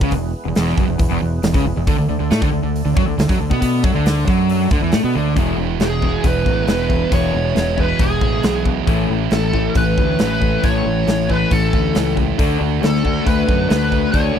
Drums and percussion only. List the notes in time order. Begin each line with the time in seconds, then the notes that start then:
0.01 kick
0.11 kick, open hi-hat
0.55 snare, open hi-hat
0.67 snare
0.78 kick
0.99 kick, open hi-hat
1.43 snare, open hi-hat
1.54 kick
1.87 kick, open hi-hat
2.31 snare, open hi-hat
2.42 kick
2.76 open hi-hat
2.97 kick
3.19 snare, open hi-hat
3.29 kick
3.51 kick
3.62 kick, open hi-hat
3.84 kick
4.06 snare, open hi-hat
4.18 snare
4.28 kick
4.49 open hi-hat
4.71 kick
4.92 snare, open hi-hat
5.36 kick, open hi-hat
5.80 snare, open hi-hat
6.02 kick
6.24 kick, open hi-hat
6.46 kick
6.68 snare, open hi-hat
6.90 kick
7.12 kick, open hi-hat
7.56 snare, open hi-hat
7.78 kick
7.99 kick, open hi-hat
8.21 kick
8.43 snare, open hi-hat
8.65 kick
8.87 kick, open hi-hat
9.31 snare, open hi-hat
9.53 kick
9.75 kick, open hi-hat
9.98 kick
10.19 snare, open hi-hat
10.42 kick
10.63 kick, open hi-hat
11.08 snare, open hi-hat
11.30 kick
11.51 kick, open hi-hat
11.73 kick
11.95 snare, open hi-hat
12.17 kick
12.39 kick, open hi-hat
12.83 snare, open hi-hat
12.95 snare
13.05 kick
13.27 kick, open hi-hat
13.49 kick
13.70 snare, open hi-hat
13.92 kick
14.13 kick, open hi-hat